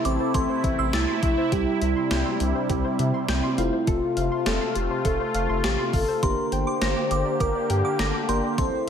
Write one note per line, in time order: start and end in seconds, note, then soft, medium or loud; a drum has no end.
0.00 6.19 C3 medium
0.00 1.48 A3 medium
0.00 1.50 A3 medium
0.00 1.48 C4 medium
0.00 1.48 E4 medium
0.00 3.54 E4 medium
0.05 0.18 A1 loud
0.05 0.95 C4 loud
0.05 0.16 D6 medium
0.05 closed hi-hat medium
0.20 0.33 C5 medium
0.34 0.47 A1 loud
0.34 0.48 A4 medium
0.34 0.45 C6 medium
0.34 kick medium
0.34 closed hi-hat medium
0.49 0.63 C5 medium
0.64 0.76 A1 loud
0.64 0.78 E5 medium
0.64 kick medium
0.64 closed hi-hat medium
0.79 0.91 A1 loud
0.79 0.92 C6 medium
0.79 1.00 E6 medium
0.93 1.06 C2 loud
0.93 1.22 E4 loud
0.93 1.07 A6 loud
0.93 snare loud
0.93 closed hi-hat medium
1.08 1.22 C6 medium
1.23 1.35 A#1 loud
1.23 1.54 E4 loud
1.23 1.36 E5 medium
1.23 kick loud
1.23 closed hi-hat medium
1.38 1.51 C5 medium
1.52 1.65 C2 loud
1.52 3.54 G3 medium
1.52 3.56 G3 medium
1.52 3.54 C4 medium
1.52 3.54 E4 medium
1.52 1.66 G4 medium
1.52 1.83 G4 loud
1.52 kick loud
1.52 closed hi-hat medium
1.82 1.94 C2 loud
1.82 2.42 E4 loud
1.82 1.95 E5 medium
1.82 closed hi-hat medium
1.96 2.10 C6 medium
2.11 2.23 C2 loud
2.11 2.25 G6 medium
2.11 snare loud
2.11 closed hi-hat medium
2.26 2.39 C6 medium
2.40 2.53 C2 loud
2.40 2.69 D4 medium
2.40 closed hi-hat medium
2.55 2.69 C5 medium
2.70 2.82 C2 loud
2.70 3.25 C4 loud
2.70 2.83 G4 medium
2.70 kick medium
2.70 closed hi-hat medium
2.85 2.98 C5 medium
2.99 3.12 C3 loud
2.99 3.13 E5 medium
2.99 closed hi-hat medium
3.14 3.28 C6 medium
3.29 3.41 C2 loud
3.29 3.60 C4 loud
3.29 3.42 G6 loud
3.29 snare loud
3.29 closed hi-hat medium
3.43 3.57 C6 medium
3.58 3.71 F1 loud
3.58 5.89 A3 medium
3.58 6.20 A3 medium
3.58 5.89 C4 medium
3.58 3.89 E4 loud
3.58 5.89 F4 medium
3.58 6.20 F4 medium
3.58 3.72 F5 medium
3.58 closed hi-hat medium
3.73 3.86 C5 medium
3.87 4.00 F1 loud
3.87 4.48 F4 loud
3.87 4.01 A4 medium
3.87 kick loud
3.87 closed hi-hat medium
4.17 4.29 F1 loud
4.17 4.30 F5 medium
4.17 closed hi-hat medium
4.32 4.45 C6 medium
4.46 4.59 F1 loud
4.46 4.77 A4 loud
4.46 4.60 A6 medium
4.46 snare loud
4.46 closed hi-hat medium
4.61 4.75 C6 medium
4.76 4.88 F1 loud
4.76 5.07 G4 loud
4.76 closed hi-hat medium
4.91 5.04 C5 medium
5.05 5.17 F1 loud
5.05 5.19 A4 medium
5.05 5.65 A4 loud
5.05 kick medium
5.05 closed hi-hat medium
5.20 5.33 C5 medium
5.34 5.47 F1 loud
5.34 5.48 F5 medium
5.34 closed hi-hat medium
5.49 5.62 F1 loud
5.49 5.63 C6 medium
5.64 5.76 A1 loud
5.64 5.93 G4 loud
5.64 5.78 A6 loud
5.64 snare loud
5.64 closed hi-hat medium
5.79 5.92 C6 medium
5.93 6.06 G1 medium
5.93 6.24 A4 loud
5.93 6.07 F5 medium
5.93 kick loud
5.93 open hi-hat medium
6.08 6.22 C5 medium
6.23 6.35 G1 loud
6.23 8.56 D3 medium
6.23 8.25 A#3 medium
6.23 8.56 A#3 medium
6.23 8.25 D4 medium
6.23 8.25 G4 medium
6.23 8.56 G4 loud
6.23 6.54 A#4 loud
6.23 6.36 A#4 medium
6.23 6.34 C6 loud
6.23 kick loud
6.23 closed hi-hat medium
6.52 6.65 G1 loud
6.52 7.42 C5 loud
6.52 6.66 G5 medium
6.52 closed hi-hat medium
6.67 6.88 C6 medium
6.67 6.81 D6 medium
6.82 6.94 G1 loud
6.82 6.95 A#6 medium
6.82 snare loud
6.82 closed hi-hat medium
6.96 7.10 D6 medium
7.11 7.23 G1 loud
7.11 7.22 D6 medium
7.11 closed hi-hat medium
7.26 7.39 D5 medium
7.40 7.53 G1 loud
7.40 7.54 A#4 medium
7.40 7.71 A#4 loud
7.40 7.51 D6 medium
7.40 kick medium
7.40 closed hi-hat medium
7.55 7.69 D5 medium
7.70 7.82 G2 loud
7.70 8.01 G4 loud
7.70 7.83 G5 medium
7.70 closed hi-hat medium
7.85 7.98 D6 medium
7.85 7.95 D6 medium
7.99 8.12 G1 loud
7.99 8.28 A4 loud
7.99 8.13 A#6 medium
7.99 snare loud
7.99 closed hi-hat medium
8.14 8.28 D6 medium
8.29 8.41 G1 loud
8.29 8.58 A#3 medium
8.29 8.58 D4 soft
8.29 8.58 G4 medium
8.29 8.42 A#4 loud
8.29 8.42 G5 medium
8.29 8.39 C6 medium
8.29 closed hi-hat medium
8.43 8.57 D5 medium
8.58 8.71 A1 loud
8.58 8.89 C3 medium
8.58 8.89 A3 medium
8.58 8.89 C4 medium
8.58 8.89 E4 medium
8.58 8.72 A4 loud
8.58 8.89 A4 medium
8.58 8.86 C5 loud
8.58 8.69 C6 loud
8.58 kick loud
8.58 closed hi-hat medium